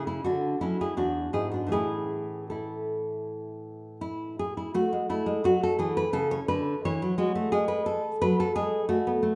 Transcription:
Already playing: C#3
0.07 C#4 E4
0.24 D3 D4 F#4
0.61 F#3 C#4 E4
0.81 E4 G#4
0.97 E2 D4 F#4
1.33 G#2 E4 G#4
1.52 D4 F#4
1.67 A2 E3 C#4
1.72 E4 G#4
2.50 E4 A4
4.01 E4
4.39 G#4
4.57 E4
4.74 A3 F#4
4.93 G#3
5.10 A3 E4
5.26 G#3
5.44 F#3 F#4
5.63 A4
5.79 E3 G#4
5.97 B4
6.13 C#3 A4
6.31 C#5
6.48 D3 B4
6.85 E3 C#5
7.02 F#3
7.18 G#3 F#4
7.35 A3
7.52 G#3 G#4
7.68 B4
7.86 A4
8.22 F#3 B4
8.40 A4
8.56 G#3 G#4
8.89 A3 F#4
9.07 B3
9.23 A3

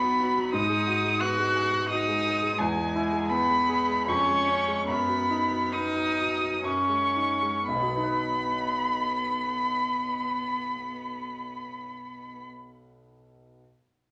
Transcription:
Already playing: D#2 F#3 B3 F#4 B5
0.03 F#3
0.19 F#4
0.37 F#3
0.53 G#2 D#4 D#6
0.69 G#3
0.87 F#4
1.04 G#3
1.20 B3 F#4 F#6
1.38 G#3
1.55 G#4
1.72 G#3
1.90 D#4 F#4 D#6
2.08 G#3
2.26 G#4
2.42 G#3
2.58 E2 G#3 G#5
2.77 G#3
2.95 E4
3.12 G#3
3.30 B3 B5
3.49 G#3
3.69 G#4
3.88 G#3
4.05 F2 C#4 C#6
4.28 G#3
4.48 C#4
4.68 G#3
4.87 F#2 B3 B5
5.08 F#3
5.30 D#4
5.51 F#3
5.72 B3 D#4 D#6
5.95 F#3
6.17 F#4
6.40 F#3
6.63 F#2 C#4 C#6
6.89 G#3
7.15 D#4
7.42 G#3
7.66 B1 B3 B5
7.75 B2
7.82 F#3
7.89 B3
7.96 D#4
8.03 B4

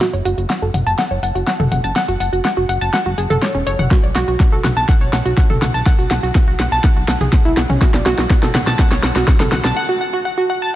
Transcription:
0.01 F#4, snare, closed hi-hat
0.13 F#1 C#5, closed hi-hat
0.25 F#1 F#4, open hi-hat
0.38 F#1 F#4, closed hi-hat
0.50 F#5, snare, closed hi-hat
0.62 F#1 A4
0.74 F#1 F#5, open hi-hat, mid tom
0.87 F#1 A5, closed hi-hat
0.99 F#5, snare, closed hi-hat
1.11 F#1 C#5
1.23 F#1 F#5, open hi-hat
1.35 F#1 F#4, closed hi-hat
1.47 F#5, snare, closed hi-hat
1.60 F#1 A4, mid tom
1.72 F#1 F#5, open hi-hat, mid tom
1.84 F#1 A5, closed hi-hat
1.96 F#5, snare, closed hi-hat
2.08 F#1 F#4, closed hi-hat
2.20 F#1 F#5, open hi-hat
2.33 F#1 F#4, closed hi-hat
2.45 F#5, snare, closed hi-hat
2.57 F#1 F#4
2.69 F#1 F#5, open hi-hat
2.81 F#1 A5, closed hi-hat
2.94 F#5, snare, closed hi-hat
3.06 F#1 F#4
3.18 F#1 G#4, open hi-hat
3.30 F#1 A4, closed hi-hat, mid tom
3.42 C#5, snare, closed hi-hat
3.55 E1 C#4
3.67 F#1 C#5, open hi-hat
3.79 F#1 F#5, closed hi-hat, mid tom
3.91 F#4, kick, snare, closed hi-hat
4.04 B1 D5, closed hi-hat
4.15 B1 F#4, snare, open hi-hat
4.28 B1 F#4, closed hi-hat
4.40 F#5, kick, snare, closed hi-hat
4.52 B1 A4
4.64 B1 F#5, snare, open hi-hat, mid tom
4.77 B1 A5, closed hi-hat
4.89 F#5, kick, snare, closed hi-hat
5.01 B1 C#5
5.13 B1 F#5, snare, open hi-hat
5.26 B1 F#4, closed hi-hat
5.38 F#5, kick, snare, closed hi-hat
5.50 B1 A4, mid tom
5.62 B1 F#5, snare, open hi-hat, mid tom
5.74 B1 A5, closed hi-hat
5.86 F#5, kick, snare, closed hi-hat
5.99 B1 F#4, closed hi-hat
6.11 B1 F#5, snare, open hi-hat
6.23 B1 F#4, closed hi-hat
6.35 F#5, kick, snare, closed hi-hat
6.48 B1 F#4
6.60 B1 F#5, snare, open hi-hat
6.72 B1 A5, closed hi-hat
6.84 F#5, kick, snare, closed hi-hat
6.97 B1 F#4
7.08 B1 F#5, snare, open hi-hat
7.21 B1 G#4, closed hi-hat, mid tom
7.33 F#5, kick, snare, closed hi-hat
7.45 B1 E4
7.57 B1 F#5, snare, open hi-hat
7.70 B1 C#4, closed hi-hat, mid tom
7.81 F#4, kick, snare, closed hi-hat
7.94 B1 D5, snare, closed hi-hat
8.06 B1 F#4, snare, open hi-hat
8.18 B1 F#4, snare, closed hi-hat
8.30 F#5, kick, snare, closed hi-hat
8.43 B1 A4, snare
8.55 B1 F#5, snare, open hi-hat, mid tom
8.67 B1 A5, snare, closed hi-hat
8.79 F#5, kick, snare, closed hi-hat
8.91 B1 C#5, snare
9.03 B1 F#5, snare, open hi-hat
9.16 B1 F#4, snare, closed hi-hat
9.28 F#5, kick, snare, closed hi-hat
9.40 B1 A4, snare, mid tom
9.52 B1 F#5, snare, open hi-hat, mid tom
9.64 B1 A5, snare, closed hi-hat
9.77 F#5
9.89 F#4
10.01 F#5
10.13 F#4
10.25 F#5
10.38 F#4
10.50 F#5
10.62 A5

